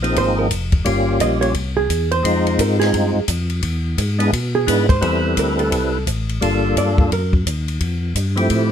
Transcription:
Already playing: tonewheel organ A#1
0.02 tonewheel organ F3 A#3 C4 D#4 G#4, ride
0.16 tonewheel organ G#1, hollow-body jazz guitar C5, kick, ride
0.39 hollow-body jazz guitar A#4
0.51 tonewheel organ F1, kick, hi-hat pedal, ride
0.72 kick, ride
0.85 tonewheel organ G1 G3 A#3 C#4 F4 G4, kick, ride
1.20 tonewheel organ A#1, hollow-body jazz guitar D#5, kick, hi-hat pedal, ride
1.41 hollow-body jazz guitar C#5, ride
1.54 tonewheel organ C2, kick, ride
1.77 hollow-body jazz guitar G#4
1.90 tonewheel organ E2, kick, hi-hat pedal, ride
2.11 hollow-body jazz guitar C5, ride
2.23 tonewheel organ F2 G#3 C4 D#4 F4, kick, ride
2.47 ride
2.59 tonewheel organ G#2, hollow-body jazz guitar A#4, kick, hi-hat pedal, ride
2.80 hollow-body jazz guitar G#4, snare, ride
2.93 tonewheel organ G2, kick, ride
3.15 tonewheel organ G2
3.28 tonewheel organ F2, kick, hi-hat pedal, ride
3.50 ride
3.62 tonewheel organ E2, kick, ride
3.98 tonewheel organ G#2, kick, hi-hat pedal, ride
4.19 tonewheel organ G#3 B3 D4 E4 G#4, ride
4.33 tonewheel organ B2, kick, ride
4.55 hollow-body jazz guitar G#4
4.67 tonewheel organ G#2 G#3 B3 D4 E4 B4, kick, hi-hat pedal, ride
4.89 hollow-body jazz guitar C5, kick, ride
5.01 tonewheel organ E2 G3 C4 E4 A4 B4, kick, ride
5.37 tonewheel organ D2, hollow-body jazz guitar A#4, kick, hi-hat pedal, ride
5.59 hollow-body jazz guitar A4, ride
5.72 tonewheel organ C2, kick, ride
6.07 tonewheel organ A1, kick, hi-hat pedal, ride
6.29 ride
6.41 tonewheel organ G1 G3 A#3 D4 F4 A4, kick, ride
6.76 tonewheel organ G2, hollow-body jazz guitar D5, kick, hi-hat pedal, ride
6.98 kick
7.11 tonewheel organ F#2, hollow-body jazz guitar A#4, kick, ride
7.33 kick
7.46 tonewheel organ D#2, kick, hi-hat pedal, ride
7.68 ride
7.80 tonewheel organ F2, kick, ride
8.15 tonewheel organ G2, kick, hi-hat pedal, ride
8.36 tonewheel organ F3 A3 C4 E4 G4, ride
8.50 tonewheel organ A2, kick, ride

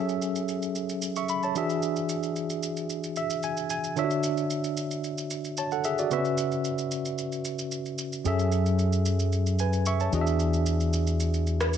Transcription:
Already playing: tine electric piano F#3 C#4 G#4 A4 E5
0.09 shaker
0.22 shaker
0.36 shaker
0.49 shaker
0.62 shaker
0.75 shaker
0.89 shaker
1.02 shaker
1.16 tine electric piano E5 C#6, shaker
1.29 tine electric piano B5, shaker
1.43 tine electric piano C#5 A5, shaker
1.55 tine electric piano E3 D4 F#4 G#4 E5, shaker
1.70 shaker
1.82 shaker
1.96 shaker
2.09 shaker
2.23 shaker
2.36 shaker
2.50 shaker
2.63 shaker
2.77 shaker
2.90 shaker
3.04 shaker
3.16 tine electric piano E5, shaker
3.30 shaker
3.43 tine electric piano G#5, shaker
3.57 shaker
3.70 tine electric piano G#5, shaker
3.84 shaker
3.96 tine electric piano D3 D4 F4 C#5 E5, shaker
4.04 tine electric piano F#4
4.11 shaker
4.23 shaker
4.37 shaker
4.50 shaker
4.64 shaker
4.77 shaker
4.91 shaker
5.04 shaker
5.18 shaker
5.30 shaker
5.45 shaker
5.57 tine electric piano C#5 A5, shaker
5.71 tine electric piano A4 F#5, shaker
5.84 tine electric piano G#4 E5, shaker
5.98 tine electric piano F#4 D5, shaker
6.10 tine electric piano C#3 B3 F#4 B4 E5, shaker
6.17 tine electric piano C#4
6.25 shaker
6.38 shaker
6.52 shaker
6.65 shaker
6.78 shaker
6.91 shaker
7.05 shaker
7.18 shaker
7.32 shaker
7.45 shaker
7.59 shaker
7.72 shaker
7.86 shaker
7.98 shaker
8.13 shaker
8.24 fingered electric bass F#2, tine electric piano F#3 C#4 G#4 A4 E5, shaker
8.39 shaker
8.52 shaker
8.66 shaker
8.79 shaker
8.93 shaker
9.06 shaker
9.20 shaker
9.32 shaker
9.47 shaker
9.59 tine electric piano B4 G#5, shaker
9.73 shaker
9.86 tine electric piano E5 C#6, shaker
10.00 tine electric piano C#5 A5, shaker
10.12 fingered electric bass E2, tine electric piano E3 D4 F#4 G#4 D#5, shaker
10.21 tine electric piano E5
10.27 shaker
10.40 shaker
10.54 shaker
10.66 shaker
10.80 shaker
10.93 shaker
11.07 shaker
11.20 shaker
11.34 shaker
11.47 shaker
11.61 cross-stick, shaker
11.73 shaker

